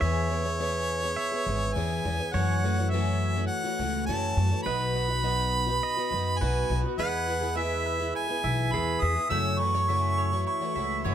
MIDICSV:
0, 0, Header, 1, 6, 480
1, 0, Start_track
1, 0, Tempo, 581395
1, 7, Time_signature, 4, 2, 24, 8
1, 9202, End_track
2, 0, Start_track
2, 0, Title_t, "Harmonica"
2, 0, Program_c, 0, 22
2, 0, Note_on_c, 0, 73, 103
2, 1433, Note_on_c, 0, 80, 98
2, 1445, Note_off_c, 0, 73, 0
2, 1922, Note_on_c, 0, 78, 97
2, 1934, Note_off_c, 0, 80, 0
2, 2394, Note_on_c, 0, 76, 97
2, 2406, Note_off_c, 0, 78, 0
2, 2858, Note_off_c, 0, 76, 0
2, 2863, Note_on_c, 0, 78, 101
2, 3323, Note_off_c, 0, 78, 0
2, 3351, Note_on_c, 0, 81, 102
2, 3807, Note_off_c, 0, 81, 0
2, 3821, Note_on_c, 0, 83, 115
2, 5269, Note_on_c, 0, 80, 96
2, 5281, Note_off_c, 0, 83, 0
2, 5624, Note_off_c, 0, 80, 0
2, 5764, Note_on_c, 0, 78, 102
2, 6247, Note_on_c, 0, 76, 92
2, 6259, Note_off_c, 0, 78, 0
2, 6727, Note_off_c, 0, 76, 0
2, 6733, Note_on_c, 0, 80, 93
2, 7199, Note_on_c, 0, 83, 97
2, 7211, Note_off_c, 0, 80, 0
2, 7439, Note_on_c, 0, 87, 97
2, 7451, Note_off_c, 0, 83, 0
2, 7672, Note_off_c, 0, 87, 0
2, 7677, Note_on_c, 0, 88, 111
2, 7914, Note_on_c, 0, 85, 119
2, 7927, Note_off_c, 0, 88, 0
2, 8636, Note_off_c, 0, 85, 0
2, 8641, Note_on_c, 0, 85, 95
2, 9202, Note_off_c, 0, 85, 0
2, 9202, End_track
3, 0, Start_track
3, 0, Title_t, "Mandolin"
3, 0, Program_c, 1, 25
3, 5770, Note_on_c, 1, 56, 87
3, 6005, Note_on_c, 1, 71, 63
3, 6250, Note_on_c, 1, 76, 62
3, 6476, Note_off_c, 1, 71, 0
3, 6485, Note_on_c, 1, 71, 62
3, 6729, Note_on_c, 1, 64, 69
3, 6956, Note_off_c, 1, 76, 0
3, 6966, Note_on_c, 1, 76, 69
3, 7199, Note_off_c, 1, 71, 0
3, 7209, Note_on_c, 1, 71, 62
3, 7435, Note_off_c, 1, 76, 0
3, 7445, Note_on_c, 1, 76, 71
3, 7683, Note_off_c, 1, 56, 0
3, 7686, Note_on_c, 1, 57, 87
3, 7734, Note_off_c, 1, 76, 0
3, 7735, Note_off_c, 1, 64, 0
3, 7736, Note_off_c, 1, 71, 0
3, 7922, Note_on_c, 1, 71, 64
3, 8044, Note_off_c, 1, 71, 0
3, 8044, Note_on_c, 1, 73, 49
3, 8159, Note_on_c, 1, 76, 68
3, 8392, Note_off_c, 1, 73, 0
3, 8402, Note_on_c, 1, 73, 64
3, 8640, Note_on_c, 1, 64, 73
3, 8869, Note_off_c, 1, 76, 0
3, 8878, Note_on_c, 1, 76, 73
3, 9107, Note_off_c, 1, 73, 0
3, 9117, Note_on_c, 1, 73, 70
3, 9202, Note_off_c, 1, 57, 0
3, 9202, Note_off_c, 1, 64, 0
3, 9202, Note_off_c, 1, 73, 0
3, 9202, Note_off_c, 1, 76, 0
3, 9202, End_track
4, 0, Start_track
4, 0, Title_t, "Pedal steel guitar"
4, 0, Program_c, 2, 26
4, 6, Note_on_c, 2, 76, 99
4, 935, Note_off_c, 2, 76, 0
4, 961, Note_on_c, 2, 76, 100
4, 1893, Note_off_c, 2, 76, 0
4, 1933, Note_on_c, 2, 73, 94
4, 3848, Note_on_c, 2, 71, 92
4, 3909, Note_off_c, 2, 73, 0
4, 4815, Note_on_c, 2, 75, 90
4, 4837, Note_off_c, 2, 71, 0
4, 5259, Note_off_c, 2, 75, 0
4, 5294, Note_on_c, 2, 71, 84
4, 5766, Note_off_c, 2, 71, 0
4, 5776, Note_on_c, 2, 71, 86
4, 7215, Note_on_c, 2, 68, 65
4, 7254, Note_off_c, 2, 71, 0
4, 7657, Note_off_c, 2, 68, 0
4, 9202, End_track
5, 0, Start_track
5, 0, Title_t, "Twelve-string acoustic guitar"
5, 0, Program_c, 3, 25
5, 14, Note_on_c, 3, 52, 80
5, 17, Note_on_c, 3, 59, 81
5, 19, Note_on_c, 3, 61, 82
5, 26, Note_on_c, 3, 68, 88
5, 235, Note_off_c, 3, 52, 0
5, 245, Note_on_c, 3, 52, 62
5, 246, Note_off_c, 3, 59, 0
5, 250, Note_off_c, 3, 61, 0
5, 256, Note_on_c, 3, 59, 67
5, 257, Note_off_c, 3, 68, 0
5, 259, Note_on_c, 3, 61, 67
5, 268, Note_on_c, 3, 68, 65
5, 354, Note_off_c, 3, 68, 0
5, 363, Note_off_c, 3, 61, 0
5, 364, Note_on_c, 3, 68, 59
5, 367, Note_off_c, 3, 52, 0
5, 372, Note_off_c, 3, 59, 0
5, 373, Note_on_c, 3, 61, 49
5, 383, Note_on_c, 3, 59, 45
5, 486, Note_off_c, 3, 68, 0
5, 487, Note_off_c, 3, 59, 0
5, 490, Note_off_c, 3, 61, 0
5, 490, Note_on_c, 3, 52, 76
5, 496, Note_on_c, 3, 59, 86
5, 499, Note_on_c, 3, 61, 85
5, 501, Note_on_c, 3, 68, 87
5, 839, Note_off_c, 3, 68, 0
5, 848, Note_off_c, 3, 61, 0
5, 849, Note_off_c, 3, 52, 0
5, 849, Note_on_c, 3, 68, 59
5, 853, Note_off_c, 3, 59, 0
5, 858, Note_on_c, 3, 61, 56
5, 869, Note_on_c, 3, 59, 50
5, 1078, Note_off_c, 3, 68, 0
5, 1087, Note_off_c, 3, 61, 0
5, 1088, Note_on_c, 3, 68, 61
5, 1096, Note_off_c, 3, 59, 0
5, 1097, Note_on_c, 3, 61, 57
5, 1106, Note_on_c, 3, 59, 56
5, 1206, Note_off_c, 3, 59, 0
5, 1208, Note_off_c, 3, 68, 0
5, 1208, Note_on_c, 3, 52, 62
5, 1213, Note_off_c, 3, 61, 0
5, 1215, Note_on_c, 3, 59, 67
5, 1223, Note_on_c, 3, 61, 68
5, 1225, Note_on_c, 3, 68, 70
5, 1438, Note_off_c, 3, 52, 0
5, 1444, Note_off_c, 3, 59, 0
5, 1448, Note_on_c, 3, 52, 75
5, 1451, Note_off_c, 3, 61, 0
5, 1453, Note_on_c, 3, 59, 87
5, 1457, Note_off_c, 3, 68, 0
5, 1461, Note_on_c, 3, 61, 88
5, 1466, Note_on_c, 3, 68, 89
5, 1684, Note_off_c, 3, 52, 0
5, 1691, Note_off_c, 3, 59, 0
5, 1694, Note_on_c, 3, 52, 67
5, 1695, Note_off_c, 3, 61, 0
5, 1698, Note_off_c, 3, 68, 0
5, 1701, Note_on_c, 3, 59, 64
5, 1709, Note_on_c, 3, 61, 70
5, 1712, Note_on_c, 3, 68, 65
5, 1803, Note_off_c, 3, 68, 0
5, 1811, Note_off_c, 3, 61, 0
5, 1812, Note_off_c, 3, 52, 0
5, 1813, Note_on_c, 3, 68, 55
5, 1815, Note_off_c, 3, 59, 0
5, 1821, Note_on_c, 3, 61, 50
5, 1830, Note_on_c, 3, 59, 47
5, 1924, Note_on_c, 3, 42, 74
5, 1927, Note_off_c, 3, 61, 0
5, 1927, Note_on_c, 3, 49, 77
5, 1928, Note_on_c, 3, 52, 79
5, 1931, Note_off_c, 3, 68, 0
5, 1932, Note_off_c, 3, 59, 0
5, 1935, Note_on_c, 3, 57, 82
5, 1937, Note_on_c, 3, 61, 88
5, 1939, Note_on_c, 3, 66, 78
5, 2159, Note_off_c, 3, 52, 0
5, 2167, Note_off_c, 3, 42, 0
5, 2168, Note_off_c, 3, 49, 0
5, 2169, Note_off_c, 3, 57, 0
5, 2169, Note_on_c, 3, 52, 62
5, 2173, Note_off_c, 3, 61, 0
5, 2174, Note_off_c, 3, 66, 0
5, 2179, Note_on_c, 3, 57, 74
5, 2182, Note_on_c, 3, 61, 70
5, 2189, Note_on_c, 3, 66, 74
5, 2284, Note_off_c, 3, 66, 0
5, 2289, Note_off_c, 3, 52, 0
5, 2292, Note_off_c, 3, 61, 0
5, 2294, Note_off_c, 3, 57, 0
5, 2294, Note_on_c, 3, 66, 54
5, 2302, Note_on_c, 3, 61, 52
5, 2305, Note_on_c, 3, 57, 50
5, 2311, Note_on_c, 3, 52, 48
5, 2412, Note_off_c, 3, 66, 0
5, 2413, Note_off_c, 3, 52, 0
5, 2415, Note_off_c, 3, 61, 0
5, 2417, Note_off_c, 3, 57, 0
5, 2420, Note_on_c, 3, 42, 80
5, 2421, Note_on_c, 3, 49, 78
5, 2423, Note_on_c, 3, 52, 81
5, 2426, Note_on_c, 3, 61, 89
5, 2427, Note_on_c, 3, 57, 90
5, 2430, Note_on_c, 3, 66, 85
5, 2762, Note_off_c, 3, 66, 0
5, 2768, Note_off_c, 3, 61, 0
5, 2772, Note_on_c, 3, 66, 52
5, 2775, Note_off_c, 3, 42, 0
5, 2775, Note_off_c, 3, 49, 0
5, 2776, Note_off_c, 3, 52, 0
5, 2776, Note_off_c, 3, 57, 0
5, 2778, Note_on_c, 3, 61, 48
5, 2786, Note_on_c, 3, 57, 47
5, 2788, Note_on_c, 3, 52, 40
5, 2997, Note_off_c, 3, 66, 0
5, 3005, Note_off_c, 3, 61, 0
5, 3007, Note_on_c, 3, 66, 54
5, 3013, Note_off_c, 3, 57, 0
5, 3014, Note_on_c, 3, 61, 55
5, 3016, Note_off_c, 3, 52, 0
5, 3023, Note_on_c, 3, 57, 51
5, 3026, Note_on_c, 3, 52, 48
5, 3122, Note_off_c, 3, 52, 0
5, 3127, Note_off_c, 3, 57, 0
5, 3128, Note_off_c, 3, 66, 0
5, 3129, Note_off_c, 3, 61, 0
5, 3132, Note_on_c, 3, 52, 64
5, 3137, Note_on_c, 3, 57, 68
5, 3139, Note_on_c, 3, 61, 61
5, 3146, Note_on_c, 3, 66, 70
5, 3365, Note_off_c, 3, 52, 0
5, 3367, Note_off_c, 3, 57, 0
5, 3367, Note_on_c, 3, 42, 82
5, 3369, Note_off_c, 3, 61, 0
5, 3372, Note_off_c, 3, 66, 0
5, 3373, Note_on_c, 3, 49, 87
5, 3375, Note_on_c, 3, 52, 88
5, 3377, Note_on_c, 3, 57, 91
5, 3379, Note_on_c, 3, 61, 89
5, 3382, Note_on_c, 3, 66, 88
5, 3594, Note_off_c, 3, 52, 0
5, 3600, Note_off_c, 3, 57, 0
5, 3604, Note_on_c, 3, 52, 65
5, 3608, Note_off_c, 3, 42, 0
5, 3608, Note_off_c, 3, 61, 0
5, 3610, Note_off_c, 3, 66, 0
5, 3610, Note_on_c, 3, 57, 60
5, 3611, Note_off_c, 3, 49, 0
5, 3618, Note_on_c, 3, 61, 65
5, 3620, Note_on_c, 3, 66, 67
5, 3716, Note_off_c, 3, 66, 0
5, 3723, Note_off_c, 3, 61, 0
5, 3726, Note_on_c, 3, 66, 53
5, 3727, Note_off_c, 3, 52, 0
5, 3728, Note_off_c, 3, 57, 0
5, 3733, Note_on_c, 3, 61, 50
5, 3738, Note_on_c, 3, 57, 51
5, 3743, Note_on_c, 3, 52, 40
5, 3839, Note_on_c, 3, 47, 84
5, 3842, Note_off_c, 3, 52, 0
5, 3842, Note_off_c, 3, 66, 0
5, 3843, Note_off_c, 3, 57, 0
5, 3845, Note_on_c, 3, 54, 80
5, 3846, Note_on_c, 3, 59, 81
5, 3847, Note_off_c, 3, 61, 0
5, 3851, Note_on_c, 3, 63, 88
5, 3852, Note_on_c, 3, 66, 81
5, 4070, Note_off_c, 3, 54, 0
5, 4076, Note_off_c, 3, 59, 0
5, 4080, Note_off_c, 3, 63, 0
5, 4080, Note_on_c, 3, 54, 67
5, 4084, Note_off_c, 3, 47, 0
5, 4085, Note_off_c, 3, 66, 0
5, 4086, Note_on_c, 3, 59, 63
5, 4090, Note_on_c, 3, 63, 67
5, 4095, Note_on_c, 3, 66, 64
5, 4189, Note_off_c, 3, 66, 0
5, 4199, Note_on_c, 3, 66, 50
5, 4201, Note_off_c, 3, 63, 0
5, 4205, Note_off_c, 3, 54, 0
5, 4208, Note_off_c, 3, 59, 0
5, 4211, Note_on_c, 3, 63, 46
5, 4217, Note_on_c, 3, 59, 48
5, 4314, Note_off_c, 3, 59, 0
5, 4316, Note_off_c, 3, 63, 0
5, 4316, Note_off_c, 3, 66, 0
5, 4317, Note_on_c, 3, 47, 83
5, 4319, Note_on_c, 3, 54, 75
5, 4324, Note_on_c, 3, 59, 81
5, 4326, Note_on_c, 3, 63, 82
5, 4326, Note_on_c, 3, 66, 88
5, 4666, Note_off_c, 3, 66, 0
5, 4676, Note_on_c, 3, 66, 53
5, 4680, Note_off_c, 3, 63, 0
5, 4683, Note_off_c, 3, 47, 0
5, 4684, Note_off_c, 3, 54, 0
5, 4686, Note_off_c, 3, 59, 0
5, 4690, Note_on_c, 3, 63, 56
5, 4697, Note_on_c, 3, 59, 54
5, 4915, Note_off_c, 3, 66, 0
5, 4925, Note_on_c, 3, 66, 57
5, 4926, Note_off_c, 3, 63, 0
5, 4933, Note_off_c, 3, 59, 0
5, 4936, Note_on_c, 3, 63, 60
5, 4944, Note_on_c, 3, 59, 47
5, 5040, Note_off_c, 3, 59, 0
5, 5040, Note_on_c, 3, 54, 63
5, 5045, Note_off_c, 3, 63, 0
5, 5047, Note_off_c, 3, 66, 0
5, 5050, Note_on_c, 3, 59, 68
5, 5055, Note_on_c, 3, 63, 70
5, 5060, Note_on_c, 3, 66, 68
5, 5281, Note_off_c, 3, 54, 0
5, 5283, Note_off_c, 3, 59, 0
5, 5286, Note_off_c, 3, 63, 0
5, 5288, Note_off_c, 3, 66, 0
5, 5290, Note_on_c, 3, 47, 77
5, 5291, Note_on_c, 3, 54, 85
5, 5293, Note_on_c, 3, 59, 84
5, 5296, Note_on_c, 3, 63, 80
5, 5298, Note_on_c, 3, 66, 96
5, 5519, Note_off_c, 3, 54, 0
5, 5525, Note_off_c, 3, 59, 0
5, 5529, Note_off_c, 3, 47, 0
5, 5529, Note_on_c, 3, 54, 61
5, 5532, Note_off_c, 3, 63, 0
5, 5533, Note_off_c, 3, 66, 0
5, 5535, Note_on_c, 3, 59, 58
5, 5543, Note_on_c, 3, 63, 66
5, 5549, Note_on_c, 3, 66, 71
5, 5634, Note_off_c, 3, 66, 0
5, 5643, Note_on_c, 3, 66, 52
5, 5647, Note_off_c, 3, 63, 0
5, 5649, Note_off_c, 3, 54, 0
5, 5652, Note_off_c, 3, 59, 0
5, 5657, Note_on_c, 3, 63, 48
5, 5663, Note_on_c, 3, 59, 43
5, 5760, Note_off_c, 3, 59, 0
5, 5765, Note_on_c, 3, 52, 78
5, 5766, Note_off_c, 3, 66, 0
5, 5769, Note_on_c, 3, 59, 80
5, 5771, Note_off_c, 3, 63, 0
5, 5775, Note_on_c, 3, 64, 85
5, 5778, Note_on_c, 3, 68, 79
5, 5995, Note_off_c, 3, 52, 0
5, 6005, Note_off_c, 3, 59, 0
5, 6005, Note_on_c, 3, 52, 69
5, 6011, Note_off_c, 3, 64, 0
5, 6013, Note_off_c, 3, 68, 0
5, 6015, Note_on_c, 3, 59, 62
5, 6021, Note_on_c, 3, 64, 66
5, 6025, Note_on_c, 3, 68, 66
5, 6106, Note_off_c, 3, 68, 0
5, 6116, Note_on_c, 3, 68, 52
5, 6117, Note_off_c, 3, 64, 0
5, 6124, Note_off_c, 3, 59, 0
5, 6127, Note_off_c, 3, 52, 0
5, 6127, Note_on_c, 3, 64, 50
5, 6134, Note_on_c, 3, 59, 50
5, 6227, Note_off_c, 3, 59, 0
5, 6234, Note_on_c, 3, 52, 76
5, 6235, Note_off_c, 3, 64, 0
5, 6237, Note_on_c, 3, 59, 87
5, 6238, Note_off_c, 3, 68, 0
5, 6245, Note_on_c, 3, 64, 79
5, 6248, Note_on_c, 3, 68, 87
5, 6590, Note_off_c, 3, 68, 0
5, 6599, Note_off_c, 3, 64, 0
5, 6600, Note_on_c, 3, 68, 54
5, 6601, Note_off_c, 3, 52, 0
5, 6602, Note_off_c, 3, 59, 0
5, 6609, Note_on_c, 3, 64, 43
5, 6619, Note_on_c, 3, 59, 40
5, 6827, Note_off_c, 3, 68, 0
5, 6836, Note_on_c, 3, 68, 56
5, 6838, Note_off_c, 3, 64, 0
5, 6847, Note_off_c, 3, 59, 0
5, 6848, Note_on_c, 3, 64, 53
5, 6857, Note_on_c, 3, 59, 43
5, 6959, Note_off_c, 3, 59, 0
5, 6959, Note_on_c, 3, 52, 55
5, 6962, Note_off_c, 3, 68, 0
5, 6963, Note_off_c, 3, 64, 0
5, 6968, Note_on_c, 3, 59, 52
5, 6973, Note_on_c, 3, 64, 66
5, 6977, Note_on_c, 3, 68, 58
5, 7193, Note_off_c, 3, 52, 0
5, 7198, Note_off_c, 3, 59, 0
5, 7201, Note_off_c, 3, 64, 0
5, 7202, Note_on_c, 3, 52, 82
5, 7208, Note_on_c, 3, 59, 86
5, 7209, Note_off_c, 3, 68, 0
5, 7211, Note_on_c, 3, 64, 83
5, 7219, Note_on_c, 3, 68, 78
5, 7431, Note_off_c, 3, 52, 0
5, 7437, Note_off_c, 3, 59, 0
5, 7441, Note_on_c, 3, 52, 60
5, 7444, Note_off_c, 3, 64, 0
5, 7447, Note_on_c, 3, 59, 62
5, 7453, Note_off_c, 3, 68, 0
5, 7454, Note_on_c, 3, 64, 65
5, 7462, Note_on_c, 3, 68, 70
5, 7552, Note_off_c, 3, 68, 0
5, 7561, Note_off_c, 3, 64, 0
5, 7562, Note_on_c, 3, 68, 49
5, 7564, Note_off_c, 3, 52, 0
5, 7567, Note_off_c, 3, 59, 0
5, 7570, Note_on_c, 3, 64, 51
5, 7579, Note_on_c, 3, 59, 41
5, 7672, Note_on_c, 3, 42, 72
5, 7673, Note_on_c, 3, 49, 84
5, 7676, Note_off_c, 3, 59, 0
5, 7679, Note_on_c, 3, 57, 83
5, 7680, Note_off_c, 3, 68, 0
5, 7681, Note_off_c, 3, 64, 0
5, 7681, Note_on_c, 3, 52, 76
5, 7683, Note_on_c, 3, 66, 89
5, 7684, Note_on_c, 3, 61, 95
5, 7911, Note_off_c, 3, 52, 0
5, 7919, Note_off_c, 3, 42, 0
5, 7919, Note_off_c, 3, 49, 0
5, 7920, Note_off_c, 3, 57, 0
5, 7920, Note_on_c, 3, 52, 63
5, 7925, Note_off_c, 3, 61, 0
5, 7925, Note_off_c, 3, 66, 0
5, 7930, Note_on_c, 3, 57, 68
5, 7936, Note_on_c, 3, 61, 71
5, 7943, Note_on_c, 3, 66, 75
5, 8036, Note_off_c, 3, 66, 0
5, 8043, Note_off_c, 3, 52, 0
5, 8044, Note_off_c, 3, 61, 0
5, 8046, Note_on_c, 3, 66, 58
5, 8048, Note_off_c, 3, 57, 0
5, 8054, Note_on_c, 3, 61, 52
5, 8061, Note_on_c, 3, 57, 51
5, 8068, Note_on_c, 3, 52, 44
5, 8158, Note_off_c, 3, 52, 0
5, 8158, Note_off_c, 3, 57, 0
5, 8162, Note_on_c, 3, 42, 72
5, 8163, Note_off_c, 3, 61, 0
5, 8163, Note_off_c, 3, 66, 0
5, 8164, Note_on_c, 3, 49, 78
5, 8168, Note_on_c, 3, 52, 89
5, 8168, Note_on_c, 3, 57, 91
5, 8173, Note_on_c, 3, 61, 86
5, 8173, Note_on_c, 3, 66, 83
5, 8512, Note_off_c, 3, 66, 0
5, 8520, Note_off_c, 3, 61, 0
5, 8522, Note_on_c, 3, 66, 56
5, 8523, Note_off_c, 3, 42, 0
5, 8525, Note_off_c, 3, 49, 0
5, 8527, Note_off_c, 3, 52, 0
5, 8527, Note_off_c, 3, 57, 0
5, 8529, Note_on_c, 3, 61, 56
5, 8536, Note_on_c, 3, 57, 49
5, 8539, Note_on_c, 3, 52, 45
5, 8750, Note_off_c, 3, 66, 0
5, 8760, Note_off_c, 3, 61, 0
5, 8760, Note_on_c, 3, 66, 54
5, 8766, Note_off_c, 3, 57, 0
5, 8770, Note_off_c, 3, 52, 0
5, 8770, Note_on_c, 3, 61, 55
5, 8776, Note_on_c, 3, 57, 51
5, 8780, Note_on_c, 3, 52, 47
5, 8871, Note_off_c, 3, 52, 0
5, 8880, Note_off_c, 3, 57, 0
5, 8881, Note_on_c, 3, 52, 59
5, 8883, Note_off_c, 3, 66, 0
5, 8884, Note_off_c, 3, 61, 0
5, 8890, Note_on_c, 3, 57, 57
5, 8894, Note_on_c, 3, 61, 57
5, 8898, Note_on_c, 3, 66, 71
5, 9114, Note_off_c, 3, 52, 0
5, 9115, Note_off_c, 3, 61, 0
5, 9116, Note_on_c, 3, 42, 86
5, 9118, Note_off_c, 3, 57, 0
5, 9121, Note_off_c, 3, 66, 0
5, 9122, Note_on_c, 3, 49, 78
5, 9124, Note_on_c, 3, 52, 86
5, 9125, Note_on_c, 3, 61, 83
5, 9128, Note_on_c, 3, 57, 85
5, 9131, Note_on_c, 3, 66, 97
5, 9202, Note_off_c, 3, 42, 0
5, 9202, Note_off_c, 3, 49, 0
5, 9202, Note_off_c, 3, 52, 0
5, 9202, Note_off_c, 3, 57, 0
5, 9202, Note_off_c, 3, 61, 0
5, 9202, Note_off_c, 3, 66, 0
5, 9202, End_track
6, 0, Start_track
6, 0, Title_t, "Upright bass"
6, 0, Program_c, 4, 32
6, 11, Note_on_c, 4, 40, 97
6, 937, Note_off_c, 4, 40, 0
6, 1208, Note_on_c, 4, 32, 92
6, 1437, Note_off_c, 4, 32, 0
6, 1453, Note_on_c, 4, 40, 88
6, 1679, Note_off_c, 4, 40, 0
6, 1693, Note_on_c, 4, 40, 109
6, 1805, Note_off_c, 4, 40, 0
6, 1935, Note_on_c, 4, 42, 103
6, 2859, Note_off_c, 4, 42, 0
6, 3130, Note_on_c, 4, 37, 94
6, 3358, Note_off_c, 4, 37, 0
6, 3370, Note_on_c, 4, 42, 86
6, 3598, Note_off_c, 4, 42, 0
6, 3607, Note_on_c, 4, 42, 100
6, 3722, Note_off_c, 4, 42, 0
6, 3846, Note_on_c, 4, 35, 98
6, 4774, Note_off_c, 4, 35, 0
6, 5047, Note_on_c, 4, 42, 91
6, 5276, Note_off_c, 4, 42, 0
6, 5290, Note_on_c, 4, 35, 81
6, 5517, Note_off_c, 4, 35, 0
6, 5527, Note_on_c, 4, 35, 94
6, 5642, Note_off_c, 4, 35, 0
6, 5763, Note_on_c, 4, 40, 98
6, 6692, Note_off_c, 4, 40, 0
6, 6968, Note_on_c, 4, 35, 93
6, 7196, Note_off_c, 4, 35, 0
6, 7210, Note_on_c, 4, 40, 91
6, 7436, Note_off_c, 4, 40, 0
6, 7448, Note_on_c, 4, 40, 102
6, 7561, Note_off_c, 4, 40, 0
6, 7686, Note_on_c, 4, 42, 95
6, 8612, Note_off_c, 4, 42, 0
6, 8882, Note_on_c, 4, 37, 91
6, 9111, Note_off_c, 4, 37, 0
6, 9124, Note_on_c, 4, 42, 92
6, 9202, Note_off_c, 4, 42, 0
6, 9202, End_track
0, 0, End_of_file